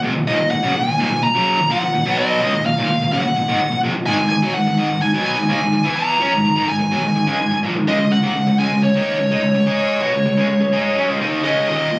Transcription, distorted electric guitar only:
0.02 F2 C3
0.15 D#2 A#2
0.27 D#2 A#2
0.39 D#2 A#2
0.51 D#2 A#2
0.63 F#2 C#3
0.75 D#2 A#2
0.87 D#2 A#2
0.99 D#2 A#2
1.11 D#2 A#2
1.23 D#2 A#2
1.35 F#2 C#3 F#3
1.58 D#2 A#2
1.70 A#2 F3
1.81 D#2 A#2
1.94 D#2 A#2
2.05 B2 F#3 B3
2.42 C#3 G#3
2.54 D#2 A#2
2.66 D#2 A#2
2.77 D#2 A#2
2.89 D#2 A#2
3.01 D#2 A#2
3.12 F#2 C#3
3.25 D#2 A#2
3.37 D#2 A#2
3.48 G#2 D#3
3.60 D#2 A#2
3.72 D#2 A#2
3.84 F2 C3
3.95 D#2 A#2
4.07 G#2 D#3
4.19 G#2 D#3
4.30 G#2 D#3
4.42 B2 F#3
4.55 G#2 D#3
4.67 G#2 D#3
4.78 G#2 D#3
4.90 G#2 D#3
5.02 G#2 D#3
5.14 B2 F#3 B3
5.37 G#2 D#3
5.49 D#3 A#3
5.61 G#2 D#3
5.73 G#2 D#3
5.84 E3 B3 E4
6.19 F#3 C#4
6.33 G#2 D#3
6.45 G#2 D#3
6.56 G#2 D#3
6.68 G#2 D#3
6.80 G#2 D#3
6.92 B2 F#3
7.03 G#2 D#3
7.16 G#2 D#3
7.27 C#3 G#3
7.39 G#2 D#3
7.51 G#2 D#3
7.63 A#2 F3
7.76 G#2 D#3
7.87 C#3 G#3
7.99 C#3 G#3
8.11 C#3 G#3
8.23 D#3 A#3
8.35 C#3 G#3
8.47 C#3 G#3
8.59 C#3 G#3
8.72 C#3 G#3
8.83 C#3 G#3
8.95 D#3 A#3 D#4
9.19 C#3 G#3
9.31 G#3 D#4
9.43 C#3 G#3
9.54 C#3 G#3
9.66 G#3 D#4 G#4
10.02 B3 F#4
10.14 C#3 G#3
10.26 C#3 G#3
10.37 C#3 G#3
10.48 C#3 G#3
10.61 C#3 G#3
10.73 G#3 D#4 G#4
10.96 F#3 C#4
11.08 C#3 G#3
11.21 D#3 A#3 D#4
11.44 C#3 G#3 C#4
11.68 D#2 A#2 D#3
11.92 D#2 A#2

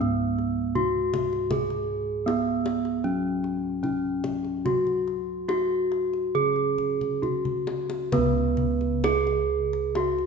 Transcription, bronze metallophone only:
0.01 B3
0.75 F#4
1.52 G#4
2.26 B3
3.04 C#4
3.83 C#4
4.66 F#4
5.48 F#4
6.35 G#4
7.22 F#4
8.13 B3
9.04 G#4
9.96 F#4

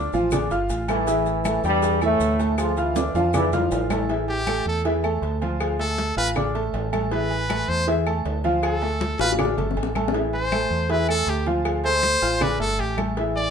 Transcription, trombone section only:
Already playing: D3 D4
0.90 E3 E4
1.65 G2 G3
2.03 A2 A3
2.60 F3 F4
2.79 E3 E4
3.17 D3 D4
3.36 E3 E4
3.54 F3 F4

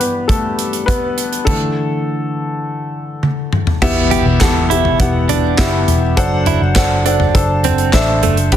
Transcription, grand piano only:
Already playing: G2 E3 G3 G4
0.00 B3 B4
0.28 A3 A4
0.86 B3 B4
1.45 D3 E3 A3 A4
3.82 B2 B3 E4 G4 E5
4.41 B3 E4 G4 A4
4.71 B3 E4 G4 E5
5.00 B3 E4 G4 F#5
5.58 B3 E4 G4 E5
6.17 F#3 D4 A4 C5 F#5
6.76 D4 A4 C5 F#5
7.06 D4 A4 C5 F#5
7.34 D4 A4 C5 A5
7.94 D4 A4 C5 E5
8.52 G2 D3 D4 G4 B4 G5

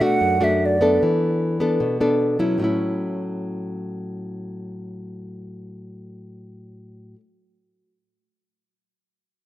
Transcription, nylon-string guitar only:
Already playing: B2
0.00 A3 D4 F#4
0.21 F#2
0.40 A3 D4 F#4
0.81 B3 D4 A4
1.03 E3
1.60 B3 D4 A4
1.80 B2
2.01 B3 D4 A4
2.39 F#3 C#4 E4
2.58 A2 F#3 C#4
2.64 E4

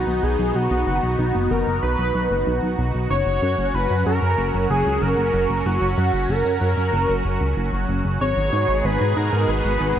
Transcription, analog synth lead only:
Already playing: F#4
0.24 G#4
0.56 F#4
0.87 F#4
1.51 A#4
1.83 B4
3.10 C#5
3.75 B4
4.06 A#4
4.70 G#4
5.02 A#4
5.66 F#4
5.98 F#4
6.30 A#4
8.21 C#5
8.85 B4
9.17 A#4
9.49 B4

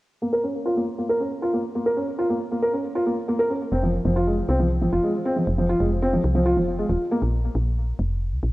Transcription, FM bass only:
3.72 F1
4.05 F1
4.49 C2
4.82 G#1
4.92 F1
5.47 F1
5.80 F1
6.24 C2
6.57 F1
6.90 D#1
7.22 A#1
7.55 A#1
7.99 F1
8.32 C#2
8.43 A#1

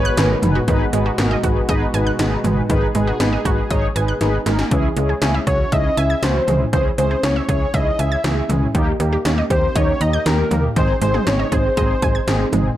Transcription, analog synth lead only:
Already playing: B4
5.47 C#5
5.72 D#5
5.97 E5
6.23 C5
6.73 C5
6.98 C5
7.24 C#5
7.49 C#5
7.74 D#5
7.99 E5
9.51 C5
9.76 C#5
10.01 D#5
10.26 A#4
10.77 C5
11.02 C5
11.27 C#5
11.52 C5

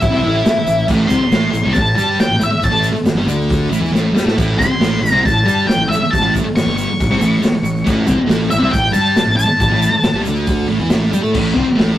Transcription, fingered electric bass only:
0.02 A1
0.15 C2
0.26 A1
0.47 muted fingered electric bass stroke
0.57 muted fingered electric bass stroke
0.66 A1
0.90 A1
1.10 C2
1.21 muted fingered electric bass stroke
1.30 A1
1.53 A1
1.65 C2
1.77 A1
1.96 G2
2.19 muted fingered electric bass stroke
2.29 A1
2.39 A1
2.50 muted fingered electric bass stroke
2.64 A1
2.72 A1
2.95 muted fingered electric bass stroke
3.05 muted fingered electric bass stroke
3.15 G1
3.26 D2
3.71 A1
3.81 E2
3.91 A1
4.12 G2
4.25 A2
4.38 A1
4.59 C2
4.69 muted fingered electric bass stroke
4.80 A1
5.01 A1
5.12 C2
5.26 A1
5.44 G2
5.65 muted fingered electric bass stroke
5.76 A1
5.88 A1
6.00 muted fingered electric bass stroke
6.13 A1
6.21 A1
6.45 muted fingered electric bass stroke
6.56 muted fingered electric bass stroke
6.66 G1
6.88 muted fingered electric bass stroke
7.00 A1
7.09 C2
7.20 A1
7.42 muted fingered electric bass stroke
7.52 muted fingered electric bass stroke
7.62 A1
7.86 A1
8.09 C2
8.20 muted fingered electric bass stroke
8.29 A1
8.52 A1
8.62 C2
8.74 A1
8.94 G2
9.16 muted fingered electric bass stroke
9.27 A1
9.37 A1
9.48 muted fingered electric bass stroke
9.61 A1
9.71 A1
9.92 muted fingered electric bass stroke
10.02 muted fingered electric bass stroke
10.14 G1
10.26 D2
10.68 A1
10.80 E2
10.91 A1
11.13 G2
11.24 A2
11.35 A1
11.56 C2
11.68 muted fingered electric bass stroke
11.79 A1

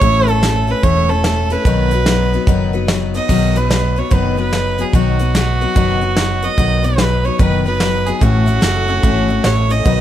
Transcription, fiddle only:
Already playing: C#5
0.29 A4
0.71 B4
0.83 C#5
1.10 A4
1.52 B4
3.16 D#5
3.57 B4
3.99 C#5
4.13 B4
4.40 B4
4.81 G#4
4.95 F#4
6.44 D#5
6.85 B4
7.25 C#5
7.39 B4
7.66 B4
8.06 G#4
8.22 F#4
9.45 C#5
9.71 D#5

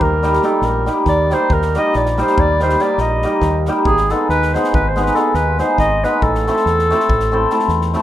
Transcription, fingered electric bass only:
0.02 D#2
0.62 A#1
1.06 D#2
1.50 D#2
1.95 A#1
2.39 D#2
2.98 A#1
3.42 D#2
3.86 G#1
4.29 D#2
4.73 G#1
5.34 D#2
5.78 G#1
6.22 A1
6.66 E2
7.09 A1
7.68 E2

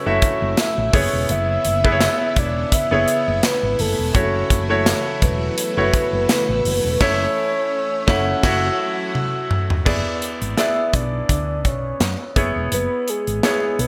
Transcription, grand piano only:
Already playing: A3 E4 F#4 C#5
0.06 A3 E4 F#4 E5
0.93 B3 E4 G#4 C#5
1.84 B3 E4 G#4 B4
1.92 C#5
2.91 B3 E4 G#4 C#5
4.14 A3 E4 F#4 C#5
4.69 A3 E4 F#4 C#5
5.77 A3 E4 F#4 C#5
7.00 A3 C#4 E4 C#5
8.07 A3 C#4 E4
8.43 A3 E4 F#4 C#5
9.85 B3 E4 G#4 D5
10.57 B3 E4 G#4 D5
12.36 B3 E4 G#4 C#5
13.43 B3 E4 G#4 C#5

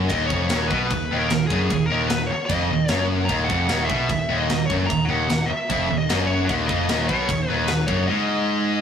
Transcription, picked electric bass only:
0.11 D#1
0.30 F1
0.52 D#1
0.71 B1
0.91 D#1
1.12 D#1
1.32 D#1
1.51 F#1
1.71 D#1
1.93 D#1
2.12 D#1
2.32 muted picked electric bass stroke
2.50 F1
2.71 D#1
2.90 F#1
3.30 D#1
3.50 F1
3.72 D#1
3.90 B1
4.10 D#1
4.32 D#1
4.51 D#1
4.70 F#1
4.91 D#1
5.11 D#1
5.30 D#1
5.52 muted picked electric bass stroke
5.70 F1
5.91 D#1
6.11 F#1
6.50 D#1
6.70 F1
6.90 D#1
7.10 B1
7.29 D#1
7.52 D#1
7.71 D#1
7.88 F#1

